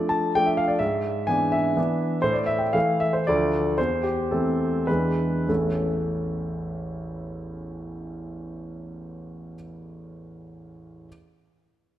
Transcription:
0.00 0.31 F3 soft
0.00 0.31 A3 soft
0.00 0.31 D4 soft
0.00 0.11 D5 medium
0.09 0.34 A5 medium
0.35 0.78 F3 soft
0.35 0.78 A3 medium
0.35 0.78 D4 medium
0.35 0.47 G5 medium
0.46 0.58 E5 medium
0.57 0.70 F5 medium
0.68 0.80 D5 medium
0.79 1.27 G#2 medium
0.79 1.28 E5 medium
1.27 1.73 E3 soft
1.27 1.74 B3 soft
1.27 1.74 D4 soft
1.27 1.53 G#5 medium
1.52 2.23 E5 medium
1.77 2.20 E3 soft
1.77 2.20 B3 medium
1.77 2.20 D4 medium
2.22 2.73 A2 medium
2.22 2.35 C5 medium
2.33 2.47 D5 medium
2.46 2.60 E5 medium
2.58 2.73 G5 soft
2.73 3.23 E3 soft
2.73 3.24 A3 soft
2.73 3.24 E4 soft
2.73 3.01 F5 medium
3.00 3.14 E5 medium
3.13 3.27 C5 medium
3.27 3.77 D2 medium
3.27 3.74 F3 soft
3.27 3.74 A3 soft
3.27 3.75 D4 soft
3.27 3.78 D5 medium
3.78 4.30 E2 medium
3.78 4.03 C5 medium
4.03 4.31 G4 medium
4.31 4.85 E3 soft
4.31 4.85 A3 soft
4.31 4.85 C4 soft
4.31 4.88 A4 soft
4.87 5.47 E2 medium
4.87 5.45 E3 soft
4.87 5.46 G#3 soft
4.87 5.46 D4 soft
4.87 5.49 B4 medium
5.48 9.54 A1 soft
5.48 9.54 E2 soft
5.48 9.54 E3 soft
5.48 9.55 A3 soft
5.48 9.55 C#4 soft
5.48 9.55 E4 soft
5.48 9.55 A4 soft

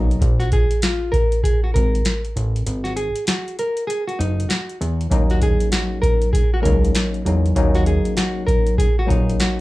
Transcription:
0.00 0.18 B1 medium
0.00 0.18 F#3 medium
0.00 0.18 A#3 medium
0.00 0.19 C#4 medium
0.00 0.19 D#4 medium
0.11 closed hi-hat soft
0.21 0.65 A#1 loud
0.21 kick loud
0.21 closed hi-hat loud
0.40 0.50 F#4 medium
0.40 snare soft
0.40 closed hi-hat soft
0.52 0.80 G#4 medium
0.52 kick medium
0.52 closed hi-hat medium
0.71 closed hi-hat medium
0.82 1.10 F4 medium
0.82 snare loud
0.82 closed hi-hat loud
1.12 1.40 A#4 medium
1.12 kick loud
1.12 closed hi-hat medium
1.32 closed hi-hat medium
1.43 1.61 G#4 medium
1.43 kick medium
1.43 closed hi-hat medium
1.64 1.74 F#4 medium
1.74 2.02 G#1 medium
1.74 2.21 A#4 medium
1.74 kick medium
1.74 closed hi-hat medium
1.95 closed hi-hat soft
2.05 snare loud
2.05 closed hi-hat medium
2.25 closed hi-hat soft
2.36 2.63 A1 loud
2.36 closed hi-hat medium
2.56 closed hi-hat soft
2.67 3.10 G#1 loud
2.67 closed hi-hat medium
2.84 2.95 F#4 medium
2.84 snare soft
2.84 closed hi-hat soft
2.96 3.24 G#4 medium
2.96 closed hi-hat medium
3.16 closed hi-hat medium
3.27 3.55 F#4 medium
3.27 snare loud
3.27 closed hi-hat loud
3.48 closed hi-hat soft
3.59 3.86 A#4 medium
3.59 closed hi-hat medium
3.77 closed hi-hat medium
3.87 4.05 G#4 medium
3.87 closed hi-hat medium
4.08 4.18 F#4 medium
4.08 closed hi-hat soft
4.19 4.46 F#1 loud
4.19 4.47 D#4 medium
4.19 closed hi-hat medium
4.40 closed hi-hat soft
4.49 4.77 F#4 medium
4.49 snare loud
4.49 closed hi-hat medium
4.69 closed hi-hat soft
4.81 5.08 E2 medium
4.81 closed hi-hat medium
5.01 closed hi-hat soft
5.10 5.55 D#2 loud
5.10 6.38 F#3 medium
5.10 6.39 A#3 medium
5.10 6.39 C#4 medium
5.10 6.39 D#4 loud
5.10 kick loud
5.10 closed hi-hat loud
5.30 5.41 F#4 medium
5.30 snare soft
5.30 closed hi-hat soft
5.42 5.70 G#4 medium
5.42 kick medium
5.42 closed hi-hat medium
5.60 closed hi-hat medium
5.72 6.00 F#4 medium
5.72 snare loud
5.72 closed hi-hat medium
6.02 6.30 A#4 medium
6.02 kick loud
6.02 closed hi-hat medium
6.22 closed hi-hat medium
6.33 6.50 G#4 medium
6.33 kick loud
6.33 closed hi-hat medium
6.54 6.62 F#4 medium
6.62 6.92 C#2 medium
6.62 7.20 F#3 medium
6.62 7.21 A#3 medium
6.62 7.21 C#4 medium
6.62 7.21 D#4 medium
6.62 7.10 A#4 medium
6.62 kick medium
6.62 closed hi-hat medium
6.85 closed hi-hat soft
6.95 snare loud
6.95 closed hi-hat medium
7.14 closed hi-hat soft
7.25 7.52 E2 medium
7.25 7.54 F#3 medium
7.25 7.54 A#3 medium
7.25 7.54 C#4 medium
7.25 7.55 D#4 medium
7.25 closed hi-hat medium
7.46 closed hi-hat soft
7.56 8.00 D#2 loud
7.56 8.83 F#3 medium
7.56 8.84 A#3 medium
7.56 8.84 C#4 medium
7.56 8.85 D#4 loud
7.56 kick loud
7.56 closed hi-hat loud
7.75 7.85 F#4 medium
7.75 snare soft
7.75 closed hi-hat soft
7.86 8.14 G#4 medium
7.86 closed hi-hat medium
8.05 closed hi-hat medium
8.17 8.45 F#4 medium
8.17 snare loud
8.17 closed hi-hat loud
8.47 8.75 A#4 medium
8.47 kick loud
8.47 closed hi-hat medium
8.67 closed hi-hat medium
8.78 8.95 G#4 medium
8.78 kick loud
8.78 closed hi-hat medium
8.99 9.09 F#4 medium
9.06 9.61 F#3 medium
9.06 9.61 A#3 medium
9.06 9.61 C#4 medium
9.06 9.36 D#4 medium
9.06 9.61 D#4 loud
9.06 kick medium
9.10 9.36 A#1 medium
9.10 closed hi-hat medium
9.30 closed hi-hat soft
9.40 9.61 F#4 medium
9.40 snare loud
9.40 closed hi-hat medium

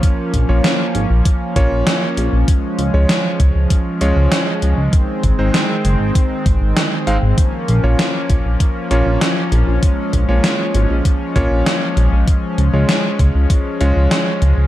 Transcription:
0.00 2.44 F3 medium
0.00 0.45 A#3 medium
0.00 2.44 A#3 medium
0.00 0.45 C#4 medium
0.00 4.89 C#4 medium
0.00 0.45 F4 medium
0.00 0.45 C#5 loud
0.00 kick loud
0.00 closed hi-hat medium
0.34 0.45 A#1 medium
0.34 kick medium
0.34 closed hi-hat medium
0.49 0.60 A#1 medium
0.49 1.52 A#3 medium
0.49 1.52 C#4 medium
0.49 1.52 F4 medium
0.49 1.52 C#5 medium
0.64 snare loud
0.64 closed hi-hat medium
0.95 1.06 G#1 loud
0.95 closed hi-hat medium
1.10 1.22 A#1 medium
1.25 kick loud
1.25 closed hi-hat loud
1.56 1.68 A#1 medium
1.56 2.46 A#3 medium
1.56 2.46 C#4 medium
1.56 2.46 F4 medium
1.56 2.46 C#5 loud
1.56 kick loud
1.56 closed hi-hat medium
1.71 1.83 A#1 medium
1.87 snare loud
1.87 closed hi-hat medium
2.17 2.29 A#1 loud
2.17 closed hi-hat medium
2.33 2.44 A#1 medium
2.48 4.90 F3 medium
2.48 7.34 G#3 medium
2.48 kick loud
2.48 closed hi-hat medium
2.79 2.90 C#2 medium
2.79 closed hi-hat medium
2.94 3.05 C#2 medium
2.94 3.97 G#3 medium
2.94 3.97 C#4 medium
2.94 3.97 F4 medium
2.94 3.97 C#5 medium
3.09 snare loud
3.09 closed hi-hat medium
3.40 3.51 C#2 medium
3.40 kick loud
3.40 closed hi-hat medium
3.55 3.67 C#2 medium
3.70 kick loud
3.70 closed hi-hat loud
4.01 4.12 C#2 loud
4.01 4.91 G#3 medium
4.01 4.91 C#4 medium
4.01 4.91 F4 medium
4.01 4.91 C#5 medium
4.01 closed hi-hat medium
4.16 4.28 C#2 medium
4.32 snare loud
4.32 closed hi-hat loud
4.62 4.74 C#2 loud
4.62 closed hi-hat medium
4.78 4.89 C#2 medium
4.93 7.35 D#3 medium
4.93 7.35 C4 medium
4.93 kick loud
4.93 closed hi-hat medium
5.23 5.35 G#1 loud
5.23 kick medium
5.23 closed hi-hat medium
5.39 5.50 G#1 medium
5.39 6.42 G#3 medium
5.39 6.42 C4 medium
5.39 6.42 D#4 medium
5.39 6.42 C5 medium
5.54 snare loud
5.54 closed hi-hat medium
5.85 5.96 F#1 loud
5.85 closed hi-hat medium
6.00 6.11 G#1 medium
6.15 kick loud
6.15 closed hi-hat medium
6.46 6.57 G#1 medium
6.46 kick loud
6.46 closed hi-hat medium
6.61 6.73 G#1 medium
6.77 snare loud
6.77 closed hi-hat medium
7.07 7.19 G#1 loud
7.07 7.15 G#3 medium
7.07 7.15 C4 medium
7.07 7.15 D#4 medium
7.07 7.15 F5 loud
7.07 closed hi-hat medium
7.22 7.34 G#1 medium
7.38 14.67 F3 medium
7.38 9.80 A#3 medium
7.38 14.67 C#4 medium
7.38 kick loud
7.38 closed hi-hat medium
7.68 7.80 A#1 medium
7.68 closed hi-hat medium
7.84 7.95 A#1 medium
7.84 8.87 A#3 medium
7.84 8.87 C#4 medium
7.84 8.87 F4 medium
7.84 8.87 C#5 medium
7.99 snare loud
7.99 closed hi-hat medium
8.30 8.41 A#1 loud
8.30 kick loud
8.30 closed hi-hat medium
8.45 8.56 A#1 medium
8.60 kick loud
8.60 closed hi-hat medium
8.91 9.02 A#1 medium
8.91 10.25 A#3 medium
8.91 10.25 C#4 medium
8.91 10.25 F4 medium
8.91 10.25 C#5 medium
8.91 closed hi-hat medium
9.06 9.18 A#1 medium
9.21 snare loud
9.21 closed hi-hat medium
9.52 9.64 A#1 loud
9.52 closed hi-hat medium
9.67 9.79 A#1 medium
9.83 14.67 G#3 medium
9.83 kick loud
9.83 closed hi-hat medium
10.13 10.25 A#1 medium
10.13 kick medium
10.13 closed hi-hat medium
10.29 10.40 A#1 medium
10.29 11.32 A#3 medium
10.29 11.32 C#4 medium
10.29 11.32 F4 medium
10.29 11.32 C#5 medium
10.44 snare loud
10.44 closed hi-hat medium
10.74 10.86 G#1 medium
10.74 closed hi-hat medium
10.90 11.01 A#1 medium
11.05 kick loud
11.05 closed hi-hat medium
11.36 11.47 A#1 medium
11.36 12.26 A#3 medium
11.36 12.26 C#4 medium
11.36 12.26 F4 medium
11.36 12.26 C#5 loud
11.36 kick loud
11.36 closed hi-hat medium
11.51 11.62 A#1 medium
11.66 snare loud
11.66 closed hi-hat medium
11.97 12.08 A#1 medium
11.97 closed hi-hat medium
12.12 12.24 A#1 medium
12.28 kick loud
12.28 closed hi-hat medium
12.58 12.70 C#2 medium
12.58 closed hi-hat medium
12.73 12.85 C#2 medium
12.73 13.77 G#3 medium
12.73 13.77 C#4 medium
12.73 13.77 F4 medium
12.73 13.77 C#5 medium
12.89 snare loud
12.89 closed hi-hat medium
13.19 13.31 C#2 medium
13.19 kick loud
13.19 closed hi-hat medium
13.35 13.46 C#2 medium
13.50 kick loud
13.50 closed hi-hat medium
13.81 13.92 C#2 loud
13.81 14.67 G#3 medium
13.81 14.67 C#4 medium
13.81 14.67 F4 medium
13.81 14.67 C#5 loud
13.81 closed hi-hat medium
13.96 14.07 C#2 medium
14.11 snare loud
14.11 closed hi-hat medium
14.42 14.53 C#2 loud
14.42 closed hi-hat medium
14.57 14.67 C#2 medium

